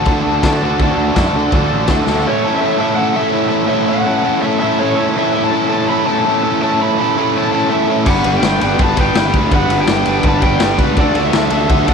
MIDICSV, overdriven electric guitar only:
0, 0, Header, 1, 2, 480
1, 0, Start_track
1, 0, Tempo, 363636
1, 1056, Time_signature, 4, 2, 24, 8
1, 15758, End_track
2, 0, Start_track
2, 0, Title_t, "Overdriven electric guitar"
2, 0, Program_c, 0, 29
2, 80, Note_on_c, 0, 50, 84
2, 97, Note_on_c, 0, 62, 88
2, 102, Note_on_c, 0, 66, 103
2, 106, Note_on_c, 0, 69, 107
2, 560, Note_off_c, 0, 50, 0
2, 576, Note_on_c, 0, 50, 84
2, 580, Note_off_c, 0, 62, 0
2, 582, Note_off_c, 0, 66, 0
2, 596, Note_on_c, 0, 62, 78
2, 598, Note_on_c, 0, 66, 90
2, 605, Note_off_c, 0, 69, 0
2, 610, Note_on_c, 0, 69, 88
2, 818, Note_off_c, 0, 50, 0
2, 821, Note_off_c, 0, 62, 0
2, 834, Note_on_c, 0, 50, 78
2, 837, Note_on_c, 0, 62, 83
2, 838, Note_off_c, 0, 66, 0
2, 854, Note_on_c, 0, 66, 89
2, 859, Note_off_c, 0, 69, 0
2, 864, Note_on_c, 0, 69, 96
2, 1059, Note_off_c, 0, 50, 0
2, 1068, Note_off_c, 0, 62, 0
2, 1071, Note_off_c, 0, 66, 0
2, 1075, Note_on_c, 0, 50, 90
2, 1078, Note_off_c, 0, 69, 0
2, 1084, Note_on_c, 0, 62, 88
2, 1086, Note_on_c, 0, 66, 106
2, 1094, Note_on_c, 0, 69, 98
2, 1519, Note_off_c, 0, 50, 0
2, 1521, Note_off_c, 0, 62, 0
2, 1529, Note_off_c, 0, 66, 0
2, 1535, Note_on_c, 0, 50, 85
2, 1537, Note_on_c, 0, 62, 94
2, 1545, Note_on_c, 0, 66, 94
2, 1547, Note_off_c, 0, 69, 0
2, 1563, Note_on_c, 0, 69, 94
2, 1771, Note_off_c, 0, 50, 0
2, 1785, Note_off_c, 0, 62, 0
2, 1785, Note_off_c, 0, 66, 0
2, 1787, Note_on_c, 0, 50, 80
2, 1792, Note_off_c, 0, 69, 0
2, 1800, Note_on_c, 0, 66, 88
2, 1801, Note_on_c, 0, 62, 87
2, 1808, Note_on_c, 0, 69, 93
2, 2014, Note_off_c, 0, 50, 0
2, 2024, Note_off_c, 0, 62, 0
2, 2030, Note_on_c, 0, 50, 91
2, 2031, Note_off_c, 0, 66, 0
2, 2040, Note_on_c, 0, 62, 89
2, 2044, Note_off_c, 0, 69, 0
2, 2047, Note_on_c, 0, 66, 97
2, 2060, Note_on_c, 0, 69, 106
2, 2479, Note_off_c, 0, 50, 0
2, 2490, Note_off_c, 0, 62, 0
2, 2495, Note_on_c, 0, 50, 88
2, 2497, Note_off_c, 0, 66, 0
2, 2497, Note_off_c, 0, 69, 0
2, 2505, Note_on_c, 0, 62, 90
2, 2512, Note_on_c, 0, 69, 90
2, 2513, Note_on_c, 0, 66, 83
2, 2719, Note_off_c, 0, 50, 0
2, 2735, Note_off_c, 0, 62, 0
2, 2735, Note_on_c, 0, 50, 82
2, 2742, Note_off_c, 0, 66, 0
2, 2749, Note_off_c, 0, 69, 0
2, 2751, Note_on_c, 0, 62, 83
2, 2757, Note_on_c, 0, 66, 91
2, 2765, Note_on_c, 0, 69, 98
2, 2957, Note_off_c, 0, 50, 0
2, 2965, Note_off_c, 0, 62, 0
2, 2968, Note_off_c, 0, 66, 0
2, 2972, Note_off_c, 0, 69, 0
2, 2979, Note_on_c, 0, 45, 87
2, 2999, Note_on_c, 0, 57, 83
2, 3000, Note_on_c, 0, 61, 89
2, 3016, Note_on_c, 0, 64, 104
2, 3020, Note_on_c, 0, 69, 103
2, 3223, Note_off_c, 0, 69, 0
2, 3229, Note_on_c, 0, 69, 84
2, 3243, Note_off_c, 0, 64, 0
2, 3248, Note_on_c, 0, 64, 73
2, 3274, Note_off_c, 0, 61, 0
2, 3279, Note_on_c, 0, 61, 68
2, 3438, Note_off_c, 0, 57, 0
2, 3443, Note_on_c, 0, 57, 77
2, 3467, Note_off_c, 0, 61, 0
2, 3472, Note_on_c, 0, 61, 83
2, 3478, Note_off_c, 0, 64, 0
2, 3483, Note_on_c, 0, 64, 77
2, 3495, Note_off_c, 0, 69, 0
2, 3500, Note_on_c, 0, 69, 92
2, 3674, Note_off_c, 0, 69, 0
2, 3679, Note_on_c, 0, 69, 83
2, 3681, Note_off_c, 0, 64, 0
2, 3686, Note_on_c, 0, 64, 93
2, 3702, Note_off_c, 0, 61, 0
2, 3706, Note_off_c, 0, 57, 0
2, 3707, Note_on_c, 0, 61, 82
2, 3711, Note_on_c, 0, 57, 78
2, 3719, Note_off_c, 0, 45, 0
2, 3724, Note_on_c, 0, 45, 69
2, 3900, Note_off_c, 0, 57, 0
2, 3905, Note_on_c, 0, 57, 68
2, 3920, Note_off_c, 0, 61, 0
2, 3925, Note_on_c, 0, 61, 79
2, 3932, Note_off_c, 0, 64, 0
2, 3937, Note_on_c, 0, 64, 81
2, 3947, Note_off_c, 0, 69, 0
2, 3952, Note_on_c, 0, 69, 81
2, 4140, Note_off_c, 0, 69, 0
2, 4146, Note_on_c, 0, 69, 101
2, 4161, Note_off_c, 0, 64, 0
2, 4164, Note_off_c, 0, 61, 0
2, 4166, Note_on_c, 0, 64, 100
2, 4169, Note_on_c, 0, 61, 80
2, 4178, Note_off_c, 0, 57, 0
2, 4183, Note_on_c, 0, 57, 86
2, 4190, Note_off_c, 0, 45, 0
2, 4196, Note_on_c, 0, 45, 82
2, 4375, Note_off_c, 0, 57, 0
2, 4380, Note_on_c, 0, 57, 76
2, 4388, Note_off_c, 0, 61, 0
2, 4393, Note_on_c, 0, 61, 72
2, 4402, Note_off_c, 0, 64, 0
2, 4408, Note_on_c, 0, 64, 83
2, 4419, Note_off_c, 0, 69, 0
2, 4425, Note_on_c, 0, 69, 87
2, 4591, Note_off_c, 0, 69, 0
2, 4596, Note_on_c, 0, 69, 76
2, 4620, Note_off_c, 0, 64, 0
2, 4625, Note_on_c, 0, 64, 63
2, 4643, Note_off_c, 0, 61, 0
2, 4648, Note_on_c, 0, 61, 61
2, 4833, Note_off_c, 0, 45, 0
2, 4838, Note_on_c, 0, 45, 92
2, 4846, Note_off_c, 0, 57, 0
2, 4851, Note_on_c, 0, 57, 96
2, 4862, Note_off_c, 0, 61, 0
2, 4867, Note_on_c, 0, 61, 102
2, 4870, Note_off_c, 0, 64, 0
2, 4876, Note_on_c, 0, 64, 90
2, 4879, Note_off_c, 0, 69, 0
2, 4884, Note_on_c, 0, 69, 100
2, 5092, Note_off_c, 0, 69, 0
2, 5097, Note_on_c, 0, 69, 75
2, 5107, Note_off_c, 0, 64, 0
2, 5113, Note_on_c, 0, 64, 79
2, 5136, Note_off_c, 0, 61, 0
2, 5141, Note_on_c, 0, 61, 68
2, 5333, Note_off_c, 0, 57, 0
2, 5339, Note_on_c, 0, 57, 72
2, 5352, Note_off_c, 0, 61, 0
2, 5358, Note_on_c, 0, 61, 79
2, 5359, Note_off_c, 0, 64, 0
2, 5364, Note_on_c, 0, 64, 80
2, 5374, Note_off_c, 0, 69, 0
2, 5379, Note_on_c, 0, 69, 79
2, 5575, Note_off_c, 0, 69, 0
2, 5580, Note_on_c, 0, 69, 89
2, 5593, Note_off_c, 0, 64, 0
2, 5596, Note_off_c, 0, 61, 0
2, 5598, Note_on_c, 0, 64, 88
2, 5601, Note_on_c, 0, 61, 89
2, 5617, Note_off_c, 0, 45, 0
2, 5617, Note_off_c, 0, 57, 0
2, 5622, Note_on_c, 0, 45, 81
2, 5623, Note_on_c, 0, 57, 72
2, 5827, Note_off_c, 0, 57, 0
2, 5832, Note_on_c, 0, 57, 85
2, 5846, Note_off_c, 0, 61, 0
2, 5852, Note_on_c, 0, 61, 77
2, 5857, Note_off_c, 0, 64, 0
2, 5862, Note_on_c, 0, 64, 86
2, 5879, Note_off_c, 0, 69, 0
2, 5884, Note_on_c, 0, 69, 85
2, 6069, Note_off_c, 0, 69, 0
2, 6074, Note_on_c, 0, 69, 85
2, 6079, Note_off_c, 0, 64, 0
2, 6084, Note_on_c, 0, 64, 88
2, 6090, Note_off_c, 0, 61, 0
2, 6095, Note_on_c, 0, 61, 91
2, 6109, Note_off_c, 0, 57, 0
2, 6114, Note_on_c, 0, 57, 79
2, 6116, Note_off_c, 0, 45, 0
2, 6122, Note_on_c, 0, 45, 80
2, 6318, Note_off_c, 0, 57, 0
2, 6323, Note_on_c, 0, 57, 76
2, 6338, Note_off_c, 0, 61, 0
2, 6344, Note_on_c, 0, 61, 75
2, 6350, Note_off_c, 0, 64, 0
2, 6355, Note_on_c, 0, 64, 79
2, 6357, Note_off_c, 0, 69, 0
2, 6362, Note_on_c, 0, 69, 83
2, 6533, Note_off_c, 0, 69, 0
2, 6538, Note_on_c, 0, 69, 73
2, 6563, Note_off_c, 0, 64, 0
2, 6569, Note_on_c, 0, 64, 71
2, 6586, Note_off_c, 0, 61, 0
2, 6591, Note_on_c, 0, 61, 64
2, 6798, Note_off_c, 0, 45, 0
2, 6803, Note_on_c, 0, 45, 91
2, 6808, Note_off_c, 0, 57, 0
2, 6813, Note_on_c, 0, 57, 90
2, 6824, Note_off_c, 0, 61, 0
2, 6829, Note_on_c, 0, 61, 90
2, 6832, Note_off_c, 0, 64, 0
2, 6838, Note_on_c, 0, 64, 102
2, 6841, Note_off_c, 0, 69, 0
2, 6846, Note_on_c, 0, 69, 94
2, 7023, Note_off_c, 0, 69, 0
2, 7028, Note_on_c, 0, 69, 84
2, 7051, Note_off_c, 0, 64, 0
2, 7056, Note_on_c, 0, 64, 76
2, 7072, Note_off_c, 0, 61, 0
2, 7077, Note_on_c, 0, 61, 75
2, 7277, Note_off_c, 0, 57, 0
2, 7282, Note_on_c, 0, 57, 76
2, 7291, Note_off_c, 0, 61, 0
2, 7296, Note_on_c, 0, 61, 83
2, 7302, Note_off_c, 0, 64, 0
2, 7308, Note_on_c, 0, 64, 83
2, 7322, Note_off_c, 0, 69, 0
2, 7327, Note_on_c, 0, 69, 92
2, 7514, Note_off_c, 0, 69, 0
2, 7519, Note_on_c, 0, 69, 94
2, 7523, Note_off_c, 0, 64, 0
2, 7529, Note_on_c, 0, 64, 89
2, 7543, Note_off_c, 0, 61, 0
2, 7548, Note_on_c, 0, 61, 89
2, 7554, Note_off_c, 0, 57, 0
2, 7556, Note_off_c, 0, 45, 0
2, 7560, Note_on_c, 0, 57, 85
2, 7561, Note_on_c, 0, 45, 68
2, 7756, Note_off_c, 0, 57, 0
2, 7769, Note_off_c, 0, 61, 0
2, 7771, Note_on_c, 0, 57, 79
2, 7785, Note_off_c, 0, 64, 0
2, 7785, Note_on_c, 0, 61, 80
2, 7800, Note_off_c, 0, 69, 0
2, 7801, Note_on_c, 0, 64, 88
2, 7815, Note_on_c, 0, 69, 82
2, 7979, Note_off_c, 0, 69, 0
2, 7992, Note_off_c, 0, 64, 0
2, 7995, Note_on_c, 0, 69, 96
2, 7999, Note_off_c, 0, 61, 0
2, 8008, Note_on_c, 0, 64, 87
2, 8015, Note_on_c, 0, 61, 81
2, 8022, Note_off_c, 0, 45, 0
2, 8025, Note_off_c, 0, 57, 0
2, 8041, Note_on_c, 0, 57, 80
2, 8051, Note_on_c, 0, 45, 72
2, 8234, Note_off_c, 0, 57, 0
2, 8249, Note_off_c, 0, 61, 0
2, 8250, Note_on_c, 0, 57, 83
2, 8258, Note_off_c, 0, 64, 0
2, 8265, Note_on_c, 0, 61, 80
2, 8274, Note_on_c, 0, 64, 89
2, 8277, Note_off_c, 0, 69, 0
2, 8293, Note_on_c, 0, 69, 80
2, 8472, Note_off_c, 0, 69, 0
2, 8488, Note_on_c, 0, 69, 74
2, 8500, Note_off_c, 0, 64, 0
2, 8507, Note_off_c, 0, 45, 0
2, 8516, Note_on_c, 0, 64, 67
2, 8517, Note_off_c, 0, 61, 0
2, 8533, Note_on_c, 0, 61, 60
2, 8724, Note_off_c, 0, 57, 0
2, 8730, Note_on_c, 0, 45, 91
2, 8736, Note_off_c, 0, 61, 0
2, 8740, Note_on_c, 0, 57, 96
2, 8751, Note_off_c, 0, 64, 0
2, 8752, Note_on_c, 0, 61, 87
2, 8759, Note_off_c, 0, 69, 0
2, 8766, Note_on_c, 0, 64, 89
2, 8775, Note_on_c, 0, 69, 94
2, 8957, Note_off_c, 0, 69, 0
2, 8973, Note_on_c, 0, 69, 80
2, 8985, Note_off_c, 0, 64, 0
2, 8997, Note_off_c, 0, 61, 0
2, 9001, Note_on_c, 0, 64, 67
2, 9013, Note_on_c, 0, 61, 70
2, 9206, Note_off_c, 0, 57, 0
2, 9208, Note_off_c, 0, 45, 0
2, 9219, Note_off_c, 0, 61, 0
2, 9222, Note_on_c, 0, 57, 74
2, 9235, Note_on_c, 0, 61, 83
2, 9239, Note_off_c, 0, 64, 0
2, 9254, Note_on_c, 0, 64, 77
2, 9255, Note_off_c, 0, 69, 0
2, 9271, Note_on_c, 0, 69, 90
2, 9449, Note_off_c, 0, 69, 0
2, 9458, Note_off_c, 0, 64, 0
2, 9460, Note_off_c, 0, 61, 0
2, 9464, Note_on_c, 0, 69, 96
2, 9473, Note_on_c, 0, 64, 78
2, 9476, Note_on_c, 0, 61, 89
2, 9481, Note_off_c, 0, 57, 0
2, 9497, Note_on_c, 0, 57, 81
2, 9507, Note_on_c, 0, 45, 75
2, 9685, Note_off_c, 0, 57, 0
2, 9700, Note_on_c, 0, 57, 78
2, 9704, Note_off_c, 0, 61, 0
2, 9716, Note_off_c, 0, 64, 0
2, 9720, Note_on_c, 0, 61, 82
2, 9726, Note_off_c, 0, 69, 0
2, 9732, Note_on_c, 0, 64, 76
2, 9742, Note_on_c, 0, 69, 83
2, 9911, Note_off_c, 0, 69, 0
2, 9927, Note_off_c, 0, 64, 0
2, 9927, Note_on_c, 0, 69, 91
2, 9940, Note_off_c, 0, 61, 0
2, 9943, Note_on_c, 0, 64, 96
2, 9951, Note_off_c, 0, 57, 0
2, 9956, Note_on_c, 0, 61, 89
2, 9957, Note_off_c, 0, 45, 0
2, 9966, Note_on_c, 0, 57, 77
2, 9983, Note_on_c, 0, 45, 80
2, 10155, Note_off_c, 0, 57, 0
2, 10162, Note_off_c, 0, 61, 0
2, 10171, Note_on_c, 0, 57, 84
2, 10178, Note_on_c, 0, 61, 82
2, 10180, Note_off_c, 0, 64, 0
2, 10191, Note_off_c, 0, 69, 0
2, 10196, Note_on_c, 0, 64, 80
2, 10207, Note_on_c, 0, 69, 77
2, 10382, Note_off_c, 0, 69, 0
2, 10398, Note_on_c, 0, 69, 65
2, 10414, Note_off_c, 0, 64, 0
2, 10427, Note_off_c, 0, 61, 0
2, 10430, Note_on_c, 0, 64, 68
2, 10436, Note_off_c, 0, 45, 0
2, 10443, Note_on_c, 0, 61, 57
2, 10629, Note_off_c, 0, 69, 0
2, 10636, Note_off_c, 0, 57, 0
2, 10645, Note_off_c, 0, 64, 0
2, 10646, Note_on_c, 0, 55, 85
2, 10651, Note_off_c, 0, 61, 0
2, 10664, Note_on_c, 0, 62, 86
2, 10680, Note_on_c, 0, 59, 88
2, 10695, Note_on_c, 0, 71, 104
2, 10883, Note_off_c, 0, 71, 0
2, 10889, Note_on_c, 0, 71, 87
2, 10909, Note_off_c, 0, 59, 0
2, 10914, Note_on_c, 0, 59, 75
2, 10915, Note_off_c, 0, 62, 0
2, 10920, Note_on_c, 0, 62, 73
2, 11122, Note_off_c, 0, 55, 0
2, 11127, Note_on_c, 0, 55, 77
2, 11141, Note_off_c, 0, 62, 0
2, 11147, Note_off_c, 0, 59, 0
2, 11147, Note_on_c, 0, 62, 84
2, 11152, Note_on_c, 0, 59, 91
2, 11159, Note_off_c, 0, 71, 0
2, 11164, Note_on_c, 0, 71, 85
2, 11362, Note_off_c, 0, 71, 0
2, 11367, Note_on_c, 0, 71, 86
2, 11379, Note_off_c, 0, 59, 0
2, 11384, Note_on_c, 0, 59, 90
2, 11396, Note_off_c, 0, 62, 0
2, 11402, Note_on_c, 0, 62, 85
2, 11407, Note_off_c, 0, 55, 0
2, 11412, Note_on_c, 0, 55, 82
2, 11590, Note_off_c, 0, 55, 0
2, 11606, Note_on_c, 0, 55, 74
2, 11618, Note_off_c, 0, 59, 0
2, 11620, Note_off_c, 0, 62, 0
2, 11625, Note_on_c, 0, 62, 71
2, 11634, Note_on_c, 0, 59, 81
2, 11641, Note_off_c, 0, 71, 0
2, 11656, Note_on_c, 0, 71, 82
2, 11837, Note_off_c, 0, 71, 0
2, 11853, Note_on_c, 0, 71, 93
2, 11855, Note_off_c, 0, 59, 0
2, 11871, Note_on_c, 0, 59, 85
2, 11881, Note_off_c, 0, 62, 0
2, 11883, Note_off_c, 0, 55, 0
2, 11887, Note_on_c, 0, 62, 79
2, 11899, Note_on_c, 0, 55, 79
2, 12072, Note_off_c, 0, 55, 0
2, 12088, Note_on_c, 0, 55, 81
2, 12098, Note_off_c, 0, 62, 0
2, 12104, Note_on_c, 0, 62, 79
2, 12107, Note_off_c, 0, 59, 0
2, 12122, Note_off_c, 0, 71, 0
2, 12123, Note_on_c, 0, 59, 83
2, 12137, Note_on_c, 0, 71, 96
2, 12344, Note_off_c, 0, 71, 0
2, 12360, Note_on_c, 0, 71, 79
2, 12362, Note_off_c, 0, 59, 0
2, 12377, Note_on_c, 0, 59, 62
2, 12390, Note_off_c, 0, 62, 0
2, 12395, Note_on_c, 0, 62, 62
2, 12559, Note_off_c, 0, 55, 0
2, 12575, Note_on_c, 0, 55, 86
2, 12591, Note_off_c, 0, 62, 0
2, 12596, Note_on_c, 0, 62, 88
2, 12597, Note_off_c, 0, 59, 0
2, 12600, Note_off_c, 0, 71, 0
2, 12613, Note_on_c, 0, 59, 100
2, 12616, Note_on_c, 0, 71, 88
2, 12793, Note_off_c, 0, 71, 0
2, 12809, Note_on_c, 0, 71, 81
2, 12814, Note_off_c, 0, 59, 0
2, 12830, Note_on_c, 0, 59, 72
2, 12848, Note_off_c, 0, 62, 0
2, 12854, Note_on_c, 0, 62, 62
2, 13040, Note_off_c, 0, 55, 0
2, 13056, Note_on_c, 0, 55, 88
2, 13069, Note_off_c, 0, 59, 0
2, 13075, Note_off_c, 0, 62, 0
2, 13080, Note_on_c, 0, 62, 84
2, 13085, Note_on_c, 0, 59, 86
2, 13087, Note_off_c, 0, 71, 0
2, 13103, Note_on_c, 0, 71, 98
2, 13270, Note_off_c, 0, 71, 0
2, 13283, Note_off_c, 0, 59, 0
2, 13286, Note_on_c, 0, 71, 86
2, 13299, Note_on_c, 0, 59, 89
2, 13301, Note_off_c, 0, 62, 0
2, 13307, Note_on_c, 0, 62, 76
2, 13312, Note_off_c, 0, 55, 0
2, 13328, Note_on_c, 0, 55, 84
2, 13515, Note_off_c, 0, 55, 0
2, 13531, Note_on_c, 0, 55, 68
2, 13543, Note_off_c, 0, 62, 0
2, 13544, Note_off_c, 0, 59, 0
2, 13548, Note_on_c, 0, 62, 72
2, 13558, Note_off_c, 0, 71, 0
2, 13560, Note_on_c, 0, 59, 79
2, 13574, Note_on_c, 0, 71, 92
2, 13755, Note_off_c, 0, 71, 0
2, 13768, Note_off_c, 0, 59, 0
2, 13771, Note_on_c, 0, 71, 99
2, 13784, Note_on_c, 0, 59, 93
2, 13798, Note_off_c, 0, 55, 0
2, 13800, Note_off_c, 0, 62, 0
2, 13805, Note_on_c, 0, 62, 80
2, 13814, Note_on_c, 0, 55, 74
2, 13987, Note_off_c, 0, 55, 0
2, 14003, Note_on_c, 0, 55, 75
2, 14013, Note_off_c, 0, 59, 0
2, 14018, Note_off_c, 0, 62, 0
2, 14024, Note_on_c, 0, 62, 74
2, 14029, Note_on_c, 0, 59, 73
2, 14031, Note_off_c, 0, 71, 0
2, 14047, Note_on_c, 0, 71, 89
2, 14221, Note_off_c, 0, 71, 0
2, 14237, Note_on_c, 0, 71, 81
2, 14246, Note_off_c, 0, 59, 0
2, 14261, Note_on_c, 0, 59, 71
2, 14282, Note_off_c, 0, 62, 0
2, 14287, Note_on_c, 0, 62, 64
2, 14473, Note_off_c, 0, 71, 0
2, 14477, Note_off_c, 0, 55, 0
2, 14486, Note_off_c, 0, 59, 0
2, 14487, Note_on_c, 0, 50, 89
2, 14495, Note_off_c, 0, 62, 0
2, 14500, Note_on_c, 0, 62, 97
2, 14510, Note_on_c, 0, 66, 96
2, 14527, Note_on_c, 0, 69, 107
2, 14725, Note_off_c, 0, 69, 0
2, 14731, Note_on_c, 0, 69, 82
2, 14749, Note_off_c, 0, 66, 0
2, 14754, Note_on_c, 0, 66, 76
2, 14772, Note_off_c, 0, 62, 0
2, 14777, Note_on_c, 0, 62, 72
2, 14950, Note_off_c, 0, 50, 0
2, 14956, Note_on_c, 0, 50, 88
2, 14972, Note_off_c, 0, 62, 0
2, 14978, Note_on_c, 0, 62, 84
2, 14988, Note_off_c, 0, 66, 0
2, 14993, Note_on_c, 0, 66, 77
2, 14998, Note_off_c, 0, 69, 0
2, 15003, Note_on_c, 0, 69, 84
2, 15186, Note_off_c, 0, 69, 0
2, 15191, Note_on_c, 0, 69, 92
2, 15204, Note_off_c, 0, 66, 0
2, 15210, Note_on_c, 0, 66, 85
2, 15218, Note_off_c, 0, 62, 0
2, 15223, Note_on_c, 0, 62, 80
2, 15232, Note_off_c, 0, 50, 0
2, 15237, Note_on_c, 0, 50, 73
2, 15407, Note_off_c, 0, 50, 0
2, 15421, Note_off_c, 0, 62, 0
2, 15422, Note_on_c, 0, 50, 84
2, 15437, Note_off_c, 0, 66, 0
2, 15437, Note_on_c, 0, 62, 80
2, 15453, Note_on_c, 0, 66, 83
2, 15461, Note_off_c, 0, 69, 0
2, 15466, Note_on_c, 0, 69, 84
2, 15657, Note_off_c, 0, 69, 0
2, 15663, Note_on_c, 0, 69, 97
2, 15665, Note_off_c, 0, 66, 0
2, 15679, Note_off_c, 0, 62, 0
2, 15681, Note_on_c, 0, 66, 87
2, 15683, Note_off_c, 0, 50, 0
2, 15695, Note_on_c, 0, 62, 89
2, 15699, Note_on_c, 0, 50, 72
2, 15758, Note_off_c, 0, 50, 0
2, 15758, Note_off_c, 0, 62, 0
2, 15758, Note_off_c, 0, 66, 0
2, 15758, Note_off_c, 0, 69, 0
2, 15758, End_track
0, 0, End_of_file